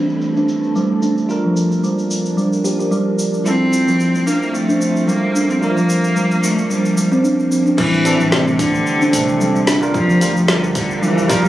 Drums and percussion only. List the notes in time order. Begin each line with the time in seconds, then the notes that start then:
0.09 shaker
0.21 shaker
0.37 shaker
0.49 shaker
0.63 shaker
0.76 shaker
1.02 shaker
1.17 shaker
1.29 shaker
1.57 shaker
1.72 shaker
1.84 shaker
1.99 shaker
2.11 shaker
2.26 shaker
2.38 shaker
2.53 shaker
2.65 shaker
2.80 shaker
2.92 shaker
3.19 shaker
3.34 shaker
3.46 shaker
3.73 shaker
3.88 shaker
4.00 shaker
4.15 shaker
4.27 shaker
4.42 shaker
4.55 shaker
4.70 shaker
4.81 shaker
4.96 shaker
5.09 shaker
5.36 shaker
5.50 shaker
5.63 shaker
5.77 shaker
5.89 shaker
6.04 shaker
6.16 shaker
6.31 shaker
6.43 shaker
6.58 shaker
6.71 shaker
6.85 shaker
6.97 shaker
7.12 shaker
7.25 shaker
7.39 shaker
7.52 shaker
7.67 shaker
7.78 kick, crash, shaker
7.94 shaker
8.05 open hi-hat, shaker
8.20 shaker
8.32 snare, shaker
8.48 shaker
8.59 kick, open hi-hat, shaker
8.75 shaker
8.87 shaker
9.02 shaker
9.13 open hi-hat, shaker
9.29 shaker
9.41 shaker
9.56 shaker
9.67 snare, open hi-hat, shaker
9.83 shaker
9.94 kick, shaker
10.10 shaker
10.21 open hi-hat, shaker
10.37 shaker
10.48 snare, shaker
10.64 shaker
10.75 kick, open hi-hat, shaker
10.91 shaker
11.03 shaker
11.18 shaker
11.29 kick, open hi-hat, shaker
11.45 shaker